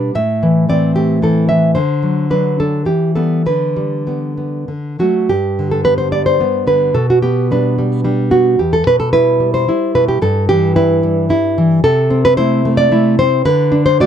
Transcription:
0.00 0.15 G3 medium
0.00 0.14 B3 medium
0.00 0.11 D4 medium
0.00 0.13 B4 medium
0.15 1.72 A2 medium
0.15 0.67 E5 loud
0.43 0.68 E3 medium
0.69 1.21 E3 soft
0.69 1.22 C4 medium
0.69 0.94 D5 medium
0.96 1.77 A3 soft
0.96 1.21 G4 medium
1.22 1.48 E3 medium
1.22 1.73 C4 medium
1.22 1.48 A4 medium
1.49 1.76 E3 medium
1.49 1.74 E5 medium
1.75 2.84 D3 medium
1.75 2.28 C5 medium
2.03 2.29 F#3 medium
2.30 2.83 F#3 soft
2.30 2.59 D4 soft
2.30 2.58 B4 medium
2.60 2.88 D4 soft
2.60 2.86 A4 medium
2.85 3.44 E3 medium
2.85 3.15 G4 medium
3.15 3.43 G3 soft
3.15 3.43 B3 soft
3.15 3.45 A4 medium
3.46 4.65 D3 medium
3.46 4.95 B4 medium
3.76 4.06 G3 soft
4.07 4.64 G3 soft
4.07 4.36 B3 soft
4.37 4.68 B3 soft
4.68 5.00 D3 soft
4.99 5.26 F#3 soft
4.99 5.27 A3 soft
4.99 5.28 F#4 medium
5.29 6.93 G2 medium
5.29 5.71 G4 medium
5.59 6.42 D3 medium
5.71 5.84 A4 medium
5.84 6.11 G3 soft
5.84 6.39 B3 medium
5.84 5.97 B4 medium
5.98 6.12 C5 medium
6.12 6.39 G3 medium
6.12 6.26 D5 medium
6.26 6.66 C5 medium
6.40 6.92 G3 soft
6.40 6.92 B3 medium
6.67 6.96 D3 soft
6.67 6.95 B4 medium
6.94 8.56 B2 medium
6.94 7.09 A4 medium
7.10 7.22 F#4 medium
7.22 8.04 B3 medium
7.22 7.50 G4 medium
7.51 7.77 G3 medium
7.51 8.04 D4 medium
7.51 8.04 B4 medium
7.78 8.03 G3 medium
8.04 8.56 G3 medium
8.04 8.56 D4 medium
8.31 8.59 B3 medium
8.31 8.58 F#4 medium
8.59 8.87 E2 medium
8.59 8.74 G4 medium
8.73 8.87 A4 medium
8.87 9.68 B2 medium
8.87 8.99 B4 loud
9.00 9.12 A4 medium
9.13 9.39 G3 medium
9.13 9.67 E4 medium
9.13 9.52 B4 loud
9.40 9.67 G3 medium
9.54 9.92 C5 loud
9.68 10.16 G3 medium
9.68 10.17 E4 medium
9.95 10.21 B2 medium
9.95 10.08 B4 loud
10.08 10.21 G4 medium
10.22 11.80 G2 medium
10.22 10.47 A4 loud
10.49 11.30 E3 medium
10.49 10.74 G4 loud
10.76 11.02 G3 medium
10.76 11.29 E4 medium
10.76 11.28 B4 loud
11.03 11.28 G3 medium
11.29 11.79 G3 medium
11.29 11.80 E4 medium
11.58 11.83 E3 medium
11.84 13.42 C3 medium
11.84 12.23 A4 loud
12.10 12.92 C4 medium
12.25 12.37 B4 loud
12.37 12.64 A3 medium
12.37 12.91 E4 medium
12.37 12.76 C5 loud
12.65 12.90 A3 medium
12.77 13.17 D5 loud
12.92 13.18 A3 medium
12.92 13.42 E4 medium
13.19 13.45 C4 medium
13.19 13.44 C5 loud
13.45 14.06 D3 medium
13.45 13.85 B4 loud
13.72 14.06 D4 medium
13.86 14.00 C5 loud
14.00 14.06 A3 medium
14.00 14.06 F#4 medium
14.00 14.06 D5 loud

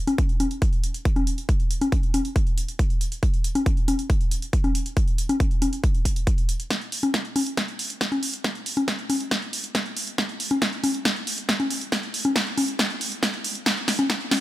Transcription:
0.07 closed hi-hat soft
0.07 high conga medium
0.18 kick loud
0.18 closed hi-hat soft
0.29 closed hi-hat soft
0.40 closed hi-hat medium
0.40 high conga medium
0.51 closed hi-hat soft
0.62 kick loud
0.62 closed hi-hat soft
0.73 closed hi-hat soft
0.84 closed hi-hat medium
0.94 closed hi-hat soft
1.05 kick loud
1.05 closed hi-hat soft
1.16 closed hi-hat soft
1.16 high conga medium
1.27 closed hi-hat medium
1.38 closed hi-hat soft
1.49 kick loud
1.49 closed hi-hat soft
1.60 closed hi-hat soft
1.71 closed hi-hat medium
1.81 closed hi-hat soft
1.81 high conga medium
1.92 kick loud
1.92 closed hi-hat soft
2.03 closed hi-hat soft
2.14 closed hi-hat medium
2.14 high conga medium
2.25 closed hi-hat soft
2.36 kick loud
2.36 closed hi-hat soft
2.47 closed hi-hat soft
2.58 closed hi-hat medium
2.68 closed hi-hat soft
2.79 kick loud
2.79 closed hi-hat soft
2.90 closed hi-hat soft
3.01 closed hi-hat medium
3.12 closed hi-hat soft
3.23 kick loud
3.23 closed hi-hat soft
3.34 closed hi-hat soft
3.44 closed hi-hat medium
3.55 closed hi-hat medium
3.55 high conga medium
3.66 kick loud
3.66 closed hi-hat medium
3.77 closed hi-hat soft
3.88 closed hi-hat medium
3.88 high conga medium
3.99 closed hi-hat soft
4.10 kick loud
4.10 closed hi-hat medium
4.21 closed hi-hat soft
4.31 closed hi-hat medium
4.42 closed hi-hat medium
4.53 kick loud
4.53 closed hi-hat medium
4.64 closed hi-hat soft
4.64 high conga medium
4.75 closed hi-hat medium
4.86 closed hi-hat soft
4.97 kick loud
4.97 closed hi-hat medium
5.08 closed hi-hat soft
5.18 closed hi-hat medium
5.29 closed hi-hat medium
5.29 high conga medium
5.40 kick loud
5.40 closed hi-hat medium
5.51 closed hi-hat soft
5.62 closed hi-hat medium
5.62 high conga medium
5.73 closed hi-hat soft
5.84 kick loud
5.84 closed hi-hat medium
5.95 closed hi-hat soft
6.05 kick medium
6.05 closed hi-hat medium
6.16 closed hi-hat medium
6.27 kick loud
6.27 closed hi-hat medium
6.38 closed hi-hat soft
6.49 closed hi-hat medium
6.60 closed hi-hat medium
6.70 kick loud
6.70 snare soft
6.70 closed hi-hat medium
6.81 closed hi-hat soft
6.92 open hi-hat loud
7.03 closed hi-hat medium
7.03 high conga medium
7.14 kick loud
7.14 snare soft
7.14 closed hi-hat medium
7.25 closed hi-hat soft
7.36 open hi-hat loud
7.36 high conga medium
7.47 closed hi-hat medium
7.57 kick loud
7.57 snare soft
7.57 closed hi-hat medium
7.68 closed hi-hat soft
7.79 open hi-hat loud
7.90 closed hi-hat medium
8.01 kick loud
8.01 snare soft
8.01 closed hi-hat medium
8.12 closed hi-hat soft
8.12 high conga medium
8.23 open hi-hat loud
8.34 closed hi-hat medium
8.44 kick loud
8.44 snare soft
8.44 closed hi-hat soft
8.55 closed hi-hat soft
8.66 open hi-hat loud
8.77 closed hi-hat medium
8.77 high conga medium
8.88 kick loud
8.88 snare medium
8.88 closed hi-hat medium
8.99 closed hi-hat soft
9.10 open hi-hat loud
9.10 high conga medium
9.20 closed hi-hat soft
9.31 kick loud
9.31 snare medium
9.31 closed hi-hat medium
9.42 closed hi-hat soft
9.53 open hi-hat loud
9.64 closed hi-hat medium
9.75 kick loud
9.75 snare medium
9.75 closed hi-hat medium
9.86 closed hi-hat soft
9.97 open hi-hat loud
10.07 closed hi-hat medium
10.18 kick loud
10.18 snare medium
10.18 closed hi-hat medium
10.29 closed hi-hat soft
10.40 open hi-hat loud
10.51 closed hi-hat soft
10.51 high conga medium
10.62 kick loud
10.62 snare medium
10.62 closed hi-hat medium
10.73 closed hi-hat soft
10.84 open hi-hat loud
10.84 high conga medium
10.94 closed hi-hat soft
11.05 kick loud
11.05 snare medium
11.05 closed hi-hat soft
11.16 closed hi-hat soft
11.27 open hi-hat loud
11.38 closed hi-hat soft
11.49 kick loud
11.49 snare medium
11.49 closed hi-hat soft
11.60 closed hi-hat soft
11.60 high conga medium
11.71 open hi-hat loud
11.81 closed hi-hat medium
11.92 kick loud
11.92 snare medium
11.92 closed hi-hat soft
12.03 closed hi-hat soft
12.14 open hi-hat loud
12.25 closed hi-hat soft
12.25 high conga medium
12.36 kick loud
12.36 snare medium
12.36 closed hi-hat medium
12.47 closed hi-hat soft
12.58 open hi-hat loud
12.58 high conga medium
12.68 closed hi-hat soft
12.79 kick loud
12.79 snare medium
12.79 closed hi-hat soft
12.90 closed hi-hat soft
13.01 open hi-hat loud
13.12 closed hi-hat soft
13.23 kick loud
13.23 snare medium
13.23 closed hi-hat soft
13.34 closed hi-hat soft
13.44 open hi-hat loud
13.55 closed hi-hat soft
13.66 kick loud
13.66 snare medium
13.66 closed hi-hat medium
13.77 closed hi-hat soft
13.88 snare medium
13.88 open hi-hat loud
13.99 closed hi-hat soft
13.99 high conga medium
14.10 kick loud
14.10 snare medium
14.10 closed hi-hat medium
14.21 closed hi-hat soft
14.31 snare medium
14.31 open hi-hat loud
14.31 high conga medium

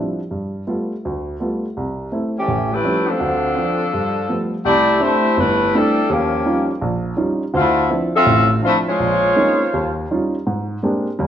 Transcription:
0.00 0.19 F3 soft
0.00 0.19 G3 soft
0.00 0.19 C4 soft
0.00 0.19 D4 soft
0.00 0.19 E4 soft
0.31 0.62 G2 medium
0.67 0.91 G3 soft
0.67 0.92 A3 soft
0.67 0.92 B3 soft
0.67 0.92 F4 soft
1.05 1.35 D2 medium
1.40 1.64 G3 soft
1.40 1.64 A3 soft
1.40 1.64 B3 soft
1.40 1.64 F4 soft
1.77 2.07 C2 medium
2.12 2.36 A3 soft
2.12 2.37 C4 soft
2.12 2.37 E4 soft
2.37 2.70 E3 medium
2.37 2.69 A3 medium
2.37 2.69 C#4 medium
2.37 2.70 G4 medium
2.48 2.79 A1 medium
2.72 3.08 A3 medium
2.72 3.08 E4 medium
2.72 3.08 G4 medium
2.72 3.08 B4 medium
2.83 3.08 F3 soft
2.83 3.08 G3 soft
2.83 3.09 A3 soft
2.83 3.09 C#4 soft
3.08 4.53 F3 medium
3.08 3.93 C4 medium
3.08 4.52 D4 medium
3.08 4.53 A4 medium
3.20 3.51 D2 medium
3.20 3.51 D3 medium
3.57 3.81 F3 soft
3.57 3.81 C4 soft
3.57 3.81 D4 soft
3.94 4.24 G2 medium
4.29 4.53 F3 soft
4.29 4.53 G3 soft
4.29 4.54 A3 soft
4.29 4.54 B3 soft
4.64 4.96 C2 medium
4.64 4.98 A3 medium
4.64 4.98 E4 medium
4.64 4.98 G4 medium
4.64 4.98 D5 medium
5.00 5.25 A3 soft
5.00 5.37 A3 medium
5.00 5.25 C4 soft
5.00 5.25 D4 soft
5.00 5.36 E4 medium
5.00 5.26 E4 soft
5.00 5.37 G4 medium
5.00 5.37 C5 medium
5.37 5.68 G1 medium
5.37 5.74 A3 medium
5.37 5.73 E4 medium
5.37 5.73 G4 medium
5.37 5.73 B4 medium
5.74 6.10 G3 medium
5.74 5.98 A3 soft
5.74 5.99 C4 soft
5.74 5.98 D4 soft
5.74 6.10 D4 medium
5.74 6.10 E4 medium
5.74 5.99 E4 medium
5.74 6.10 A4 medium
6.10 6.41 D#2 medium
6.10 6.69 F3 medium
6.10 6.69 A#3 medium
6.10 6.69 C#4 medium
6.10 6.69 G4 medium
6.46 6.70 G3 soft
6.46 6.70 C#4 soft
6.46 6.71 D#4 soft
6.46 6.71 F4 medium
6.82 7.13 A#1 medium
7.17 7.42 G3 soft
7.17 7.42 C#4 soft
7.17 7.42 D#4 soft
7.17 7.42 F4 soft
7.54 7.85 D2 medium
7.54 7.85 D3 medium
7.54 7.88 A3 medium
7.54 7.89 E4 medium
7.54 7.88 F4 medium
7.54 7.88 C5 medium
7.90 8.15 F3 soft
7.90 8.15 C4 soft
7.90 8.15 D4 soft
7.90 8.15 E4 medium
8.14 8.48 C4 medium
8.14 8.48 F4 medium
8.14 8.48 A4 medium
8.14 8.48 E5 medium
8.26 8.57 A1 medium
8.26 8.58 A2 medium
8.62 8.87 F3 soft
8.62 8.75 A3 medium
8.62 8.87 C4 soft
8.62 8.87 D4 soft
8.62 8.88 E4 medium
8.62 8.74 E4 medium
8.62 8.75 F4 medium
8.62 8.74 C5 medium
8.87 9.68 G#3 medium
8.87 9.92 F4 medium
8.87 9.92 C5 medium
8.87 9.92 C#5 medium
9.00 9.31 A#1 medium
9.36 9.61 G#3 soft
9.36 9.60 A#3 soft
9.36 9.61 C4 soft
9.36 9.61 C#4 soft
9.36 9.61 D#4 medium
9.74 10.04 D#2 medium
10.11 10.34 G3 soft
10.11 10.34 C#4 soft
10.11 10.34 D#4 soft
10.11 10.35 F4 soft
10.47 10.77 G#2 medium
10.83 11.06 G#3 soft
10.83 11.06 A#3 soft
10.83 11.07 C4 soft
10.83 11.07 D4 soft
10.83 11.07 G4 medium
11.19 11.27 D#2 medium
11.19 11.27 G3 medium

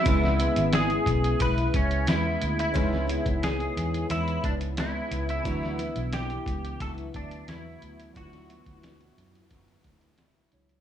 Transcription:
0.00 2.70 G#3 medium
0.00 0.77 E4 medium
0.05 0.46 C#2 loud
0.05 0.39 C#3 medium
0.05 0.39 G#3 medium
0.05 0.39 B3 medium
0.05 2.71 C#4 medium
0.05 0.37 E4 medium
0.05 2.72 E4 medium
0.05 2.73 B4 medium
0.05 kick loud
0.05 closed hi-hat medium
0.24 snare soft
0.39 1.40 G#3 soft
0.39 1.41 B3 soft
0.39 1.42 E4 soft
0.39 closed hi-hat medium
0.56 0.97 G#1 medium
0.56 closed hi-hat soft
0.73 1.41 G#4 medium
0.73 snare loud
0.73 closed hi-hat medium
0.90 closed hi-hat soft
1.06 1.33 B1 medium
1.06 kick medium
1.06 closed hi-hat medium
1.24 closed hi-hat soft
1.39 1.67 B1 medium
1.39 2.05 C#3 medium
1.39 2.07 G#3 medium
1.39 2.09 B3 medium
1.39 2.10 E4 medium
1.39 1.76 B4 loud
1.39 kick medium
1.39 closed hi-hat medium
1.58 closed hi-hat soft
1.74 2.08 C#2 medium
1.74 2.09 C#4 medium
1.74 kick medium
1.74 closed hi-hat medium
1.91 closed hi-hat soft
2.06 2.35 E2 medium
2.06 2.73 C#3 medium
2.06 2.74 G#3 medium
2.06 2.75 B3 medium
2.06 2.59 E4 medium
2.06 2.76 E4 medium
2.06 snare loud
2.06 closed hi-hat medium
2.42 2.69 D2 medium
2.42 closed hi-hat medium
2.59 3.46 E4 medium
2.59 closed hi-hat soft
2.72 3.16 C#2 loud
2.72 3.08 C#3 medium
2.72 5.40 G#3 medium
2.72 3.09 G#3 medium
2.72 3.08 B3 medium
2.72 2.82 D#4 soft
2.72 3.06 E4 medium
2.72 5.41 C#5 medium
2.72 kick loud
2.72 closed hi-hat medium
2.77 5.42 B4 medium
2.82 5.45 E4 medium
2.93 snare soft
3.07 4.08 G#3 soft
3.07 4.10 B3 soft
3.07 4.11 E4 medium
3.07 closed hi-hat medium
3.26 3.66 C#2 medium
3.26 kick medium
3.26 closed hi-hat soft
3.43 4.07 G#4 medium
3.43 snare loud
3.43 closed hi-hat medium
3.60 closed hi-hat soft
3.77 4.04 E2 medium
3.77 closed hi-hat medium
3.94 closed hi-hat soft
4.09 4.37 E2 loud
4.09 4.77 G#3 medium
4.09 4.79 B3 medium
4.09 4.45 E4 medium
4.09 4.80 E4 medium
4.09 closed hi-hat medium
4.28 closed hi-hat soft
4.44 4.98 C#2 medium
4.44 4.54 D4 medium
4.44 kick medium
4.44 closed hi-hat medium
4.61 closed hi-hat soft
4.77 5.45 C#3 medium
4.77 5.45 G#3 medium
4.77 5.46 B3 medium
4.77 5.29 E4 medium
4.77 5.47 E4 medium
4.77 snare loud
4.77 closed hi-hat medium
5.11 5.38 C#2 medium
5.11 closed hi-hat medium
5.29 6.16 E4 medium
5.29 closed hi-hat soft
5.42 5.86 D2 loud
5.42 5.79 D3 medium
5.42 8.10 E3 medium
5.42 5.79 F#3 medium
5.42 8.11 D4 medium
5.42 8.12 E4 medium
5.42 kick loud
5.42 closed hi-hat medium
5.46 5.78 B3 medium
5.46 5.77 E4 medium
5.46 8.13 B4 medium
5.63 snare soft
5.78 6.81 B3 soft
5.78 6.83 E4 soft
5.78 closed hi-hat medium
5.96 6.36 B1 medium
5.96 closed hi-hat soft
6.13 6.81 G4 medium
6.13 snare medium
6.13 closed hi-hat medium
6.30 closed hi-hat soft
6.46 6.74 C#2 medium
6.46 kick medium
6.46 closed hi-hat medium
6.65 closed hi-hat soft
6.80 7.07 C#2 medium
6.80 7.49 F#3 medium
6.80 7.50 B3 medium
6.80 7.50 E4 medium
6.80 6.91 A4 medium
6.80 kick medium
6.80 closed hi-hat medium
6.98 closed hi-hat soft
7.14 7.41 D2 medium
7.14 7.49 D4 medium
7.14 kick medium
7.14 closed hi-hat medium
7.31 closed hi-hat soft
7.47 7.75 E2 medium
7.47 8.15 D3 medium
7.47 8.16 F#3 medium
7.47 8.16 B3 medium
7.47 8.18 E4 medium
7.47 8.17 E4 medium
7.47 snare loud
7.47 closed hi-hat medium
7.82 8.09 D2 medium
7.82 closed hi-hat medium
8.00 closed hi-hat soft
8.14 8.57 D2 medium
8.14 8.49 D3 medium
8.14 10.47 F#3 medium
8.14 8.50 F#3 medium
8.14 8.49 B3 medium
8.14 10.48 D4 medium
8.14 10.49 E4 medium
8.14 10.15 F#4 medium
8.14 kick loud
8.14 closed hi-hat medium
8.18 8.47 E4 medium
8.18 8.24 F4 medium
8.25 10.53 F#4 medium
8.33 snare soft
8.33 closed hi-hat soft
8.49 9.51 F#3 soft
8.49 9.52 B3 soft
8.49 9.53 E4 soft
8.49 closed hi-hat medium
8.66 9.07 D2 medium
8.66 kick medium
8.66 closed hi-hat soft
8.83 snare medium
8.83 closed hi-hat medium
9.01 closed hi-hat soft
9.18 9.44 F#2 medium
9.18 closed hi-hat medium
9.35 closed hi-hat soft
9.50 9.78 F#2 medium
9.50 10.24 D3 medium
9.50 10.18 F#3 medium
9.50 10.20 B3 medium
9.50 10.20 E4 medium
9.50 kick medium
9.50 closed hi-hat medium
9.68 closed hi-hat soft
9.84 10.39 D2 medium
9.84 kick medium
9.84 closed hi-hat medium
10.01 closed hi-hat soft
10.18 10.81 F#3 medium
10.18 10.81 B3 medium
10.18 10.81 E4 medium
10.18 snare loud
10.18 closed hi-hat medium
10.36 closed hi-hat soft
10.51 10.79 C#2 medium
10.51 10.81 F#3 soft
10.51 10.81 D4 soft
10.51 10.81 E4 soft
10.51 10.81 C#5 medium
10.51 closed hi-hat medium
10.69 closed hi-hat soft

